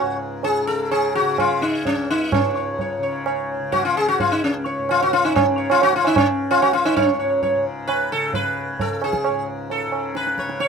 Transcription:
Already playing: C#2 C#3 F#4 C#5
0.01 G#2
0.43 G#4, tabla tin
0.62 C#3
0.67 A4
0.91 G#4, tabla na
1.15 F#4
1.21 C#3
1.38 F4, tabla na, tabla ge
1.62 D#4, tabla te
1.82 C#2, tabla tin, tabla ge
1.87 C#4
2.10 D#4
2.32 C#4, tabla na, tabla ge
2.40 G#2
2.57 C#5
2.79 C#5, tabla tin, tabla ge
2.99 C#3
3.03 C#5
3.26 C#5, tabla na
3.60 C#3
3.72 F#4, tabla tin, tabla ge
3.85 F4
3.97 G#4
4.08 F#4
4.18 C#2 F4, tabla tin, tabla ge
4.32 D#4
4.44 C#4
4.66 C#5, tabla te
4.78 G#2
4.89 F4, tabla na
5.01 F#4, tabla na
5.13 F4, tabla te
5.25 D#4, tabla na
5.36 C#3 C#4, tabla na, tabla ge
5.58 C#5
5.70 F4, tabla na
5.82 F#4, tabla na
5.93 C#3 F4, tabla te
6.05 D#4, tabla na
6.16 C#4, tabla na, tabla ge
6.51 F4, tabla na
6.55 C#2
6.62 F#4, tabla na
6.73 F4, tabla te
6.85 D#4, tabla na
6.96 G#2 C#4 C#5, tabla na, tabla ge
7.20 C#5
7.42 C#5, tabla tin, tabla ge
7.57 C#3
7.87 B4, tabla na
8.12 C#3 A4
8.33 B4, tabla tin, tabla ge
8.72 C#2
8.80 A4, tabla tin, tabla ge
9.02 G#4, tabla na
9.13 tabla ke
9.24 G#2 C#5, tabla na
9.70 A4, tabla tin
9.87 C#3
9.92 tabla na
10.15 B4, tabla te
10.27 tabla te
10.38 C#5, tabla ke
10.45 C#3
10.49 tabla te
10.60 C#5, tabla te

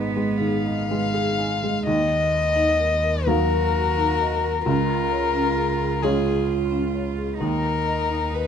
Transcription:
Already playing: G#1 G#2 G#3 B3 D#4 G#4 B4
0.15 G#3 D#5
0.39 D#3 G#4 F5
0.64 D#4 D#5
0.89 G#3 B4
1.13 G#4
1.38 D#4 G#5
1.62 G#3 D#5
1.86 D#2 D#4 D#5
2.33 D#5
2.56 D#4
2.80 A#4
3.03 A#4
3.26 F#3 D#4 F#4 A#4 F5
3.50 A#4
3.74 F#4
3.97 D#4
4.21 D#5
4.44 A#4
4.64 C#2 C#4 F4 A#4
5.11 C#5
5.34 C#4
5.57 G#4
5.80 G#4
6.02 G#3 C#4 F4 G#4 C#5
6.25 G#4
6.48 F4
6.71 C#4
6.94 C#5
7.18 G#4
7.40 D#2 D#4 A#4
7.87 D#5
8.11 D#4
8.33 A#4 B4

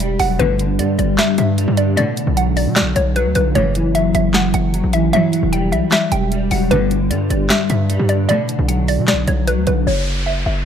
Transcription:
Already playing: E1 G5
0.00 G3, closed hi-hat
0.19 E1 F#3 F#5, open hi-hat
0.39 G1 G2 A2 B2 D3 B4, closed hi-hat
0.59 D3, closed hi-hat
0.79 G2 G3 D5, closed hi-hat
0.99 G1 D5, closed hi-hat
1.18 E5, snare, clap, closed hi-hat
1.38 G2 E5, closed hi-hat
1.58 G3, closed hi-hat
1.68 G2
1.77 D3 D5, closed hi-hat
1.97 A2 B2 D3 D5, closed hi-hat
2.17 D3, closed hi-hat
2.27 B1
2.37 F#3 F#5, closed hi-hat
2.57 D5, open hi-hat
2.67 B2
2.76 D5, snare, clap, closed hi-hat
2.81 B1
2.96 B1 C#5, closed hi-hat
3.16 F#3 B4, closed hi-hat
3.26 D2
3.35 B1 D3 B4, closed hi-hat
3.55 F#1 F#2 A2 C#3 E3 C#5, closed hi-hat
3.75 E3, closed hi-hat
3.95 F#3 E5, closed hi-hat
4.15 F#1 E5, closed hi-hat
4.34 F#5, snare, clap, closed hi-hat
4.54 F#1 F#5, closed hi-hat
4.74 F#3, closed hi-hat
4.84 A1
4.93 E3 E5, closed hi-hat
5.13 G2 B2 E3 F#3 E5, closed hi-hat
5.33 F#3, closed hi-hat
5.43 E1
5.53 G3 G5, closed hi-hat
5.72 B1 E5, closed hi-hat
5.92 E5, snare, clap, closed hi-hat
6.12 E1 G5, closed hi-hat
6.32 G3, closed hi-hat
6.51 E1 F#3 F#5, open hi-hat
6.71 G1 G2 A2 B2 D3 B4, closed hi-hat
6.91 D3, closed hi-hat
7.11 G2 G3 D5, closed hi-hat
7.30 G1 D5, closed hi-hat
7.50 E5, snare, clap, closed hi-hat
7.70 G2 E5, closed hi-hat
7.90 G3, closed hi-hat
7.99 G2
8.09 D3 D5, closed hi-hat
8.29 A2 B2 D3 D5, closed hi-hat
8.49 D3, closed hi-hat
8.59 B1
8.68 F#3 F#5, closed hi-hat
8.88 D5, open hi-hat
8.98 B2
9.08 D5, snare, clap, closed hi-hat
9.13 B1
9.28 B1 C#5, closed hi-hat
9.47 F#3 B4, closed hi-hat
9.57 D2
9.67 B1 D3 B4, closed hi-hat
9.87 F#1 C#5, downlifter
10.26 E5
10.46 F#1 E5

